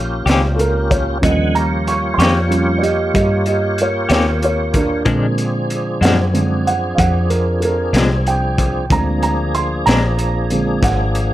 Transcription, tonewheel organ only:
0.00 1.18 A#3 medium
0.00 1.18 C#4 medium
0.00 1.18 F4 medium
0.00 1.19 G4 medium
1.23 1.55 D3 medium
1.23 1.55 B3 medium
1.23 1.55 F#5 medium
1.23 1.55 G#5 soft
1.55 5.03 A#3 medium
1.55 5.03 F4 medium
1.55 5.04 G4 medium
1.55 5.03 C#5 medium
5.05 8.86 F3 medium
5.05 8.86 C4 medium
5.05 8.85 D4 medium
5.05 8.86 G#4 medium
8.91 11.34 F3 medium
8.91 11.34 A#3 medium
8.91 11.34 D4 medium
8.91 11.34 G#4 medium

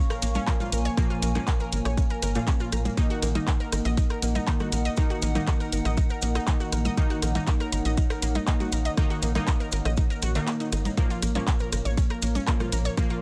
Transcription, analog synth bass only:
0.22 0.39 A#1 medium
0.72 0.89 A#1 medium
1.22 1.39 A#1 loud
1.72 1.81 G#1 medium
1.85 2.02 A#1 loud
2.22 2.39 G#1 medium
2.73 2.89 A#1 loud
3.22 3.39 A#1 loud
3.72 3.81 G#1 medium
3.85 4.02 A#1 loud
4.23 4.39 A#1 medium
4.72 4.89 A#1 medium
5.22 5.39 A#1 loud
5.72 5.81 G#1 medium
5.85 6.02 A#1 loud
6.22 6.39 A#1 medium
6.72 6.89 A#1 medium
7.22 7.39 A#1 loud
7.72 7.81 G#1 medium
7.85 8.02 A#1 loud
8.22 8.39 A#1 medium
8.72 8.89 A#1 medium
9.22 9.39 A#1 loud
9.72 9.81 G#1 medium
9.85 10.02 A#1 loud
10.23 10.39 A#1 loud
10.72 10.89 G#1 loud
11.23 11.39 A#1 loud
11.72 11.81 G#1 medium
11.85 12.02 A#1 medium
12.22 12.39 A#1 medium
12.73 12.89 A#1 medium

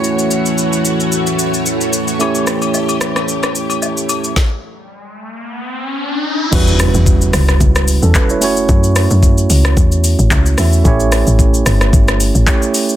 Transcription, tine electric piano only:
0.00 1.89 A3 medium
0.00 1.89 C#4 medium
0.00 1.89 E4 medium
0.00 1.90 F#4 medium
0.00 1.90 C#5 medium
2.19 4.32 A3 medium
2.19 4.32 C#4 medium
2.19 4.33 E4 medium
2.19 4.33 G4 medium
2.19 4.34 C#5 medium
6.51 8.37 G3 medium
6.51 7.85 C#4 medium
6.51 7.85 E4 medium
6.51 7.86 F#4 medium
6.51 7.86 B4 medium
8.03 8.15 C#4 medium
8.03 8.15 A4 medium
8.16 8.29 B4 medium
8.30 8.41 E4 medium
8.30 8.43 C#5 medium
8.41 10.53 A3 medium
8.41 10.54 C#4 medium
8.41 10.54 E4 medium
8.41 10.55 F#4 medium
8.41 10.55 C#5 medium
10.58 10.83 A3 medium
10.58 10.84 C#4 medium
10.58 10.85 E4 medium
10.58 10.86 F#4 medium
10.58 10.86 E5 medium
10.84 12.43 A3 medium
10.84 12.44 C#4 medium
10.84 12.44 E4 medium
10.84 12.45 G4 medium
10.84 12.45 C#5 medium
12.47 12.96 A3 medium
12.47 12.96 C#4 medium
12.47 12.96 E4 medium
12.47 12.96 G4 medium
12.47 12.96 C#5 medium

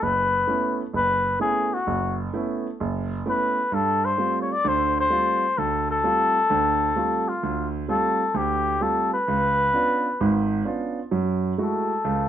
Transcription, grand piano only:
0.02 0.42 F#1 medium
0.47 0.80 A3 medium
0.47 0.81 B3 soft
0.47 0.81 C#4 medium
0.47 0.81 E4 medium
0.93 1.34 F#1 medium
1.40 1.73 A3 medium
1.40 1.73 B3 soft
1.40 1.73 C#4 soft
1.40 1.73 E4 medium
1.87 2.27 F#1 medium
2.34 2.66 A3 medium
2.34 2.66 B3 medium
2.34 2.66 C#4 medium
2.34 2.66 E4 medium
2.80 3.20 F#1 medium
3.26 3.58 A3 medium
3.26 3.58 B3 soft
3.26 3.58 C#4 soft
3.26 3.59 E4 medium
3.72 4.12 G2 medium
4.17 4.50 G3 soft
4.17 4.51 A3 soft
4.17 4.51 C4 soft
4.17 4.51 F4 medium
4.64 5.04 D2 medium
4.64 5.04 D3 medium
5.10 5.43 G3 soft
5.10 5.43 A3 soft
5.10 5.43 C4 soft
5.10 5.43 F4 medium
5.58 5.97 D2 medium
6.03 6.36 G3 medium
6.03 6.36 A3 soft
6.03 6.36 C4 medium
6.03 6.37 F4 medium
6.50 6.90 D2 medium
6.50 6.90 D3 medium
6.96 7.29 G3 medium
6.96 7.29 A3 soft
6.96 7.29 C4 soft
6.96 7.29 F4 medium
7.43 7.83 D2 medium
7.88 8.21 G3 medium
7.88 8.21 A3 soft
7.88 8.21 C4 soft
7.88 8.22 F4 medium
8.34 8.74 D2 medium
8.80 9.13 G3 medium
8.80 9.14 A3 soft
8.80 9.14 C4 soft
8.80 9.14 F4 medium
9.28 9.68 C#2 medium
9.74 10.06 B3 medium
9.74 10.06 C#4 soft
9.74 10.07 D4 soft
9.74 10.07 F4 medium
10.20 10.60 G#1 medium
10.20 10.60 G#2 medium
10.65 10.98 B3 medium
10.65 10.99 C#4 soft
10.65 10.99 D4 soft
10.65 10.99 F4 medium
11.11 11.52 F#2 medium
11.11 11.52 F#3 medium
11.58 11.91 G#3 medium
11.58 11.91 A3 soft
11.58 11.91 E4 soft
11.58 11.92 F#4 medium
12.04 12.29 C#2 medium
12.04 12.29 C#3 medium

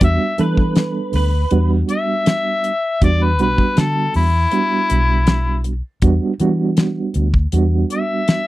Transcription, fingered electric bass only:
0.01 0.16 E2 medium
0.39 0.99 E3 medium
1.14 1.44 D2 medium
1.52 1.82 E2 medium
3.02 3.40 E2 medium
3.40 3.55 B1 loud
3.78 4.07 D3 medium
4.15 4.45 E2 medium
4.91 5.80 B1 medium
6.02 6.17 E2 medium
6.40 7.00 E3 medium
7.16 7.45 D2 medium
7.53 7.83 E2 medium

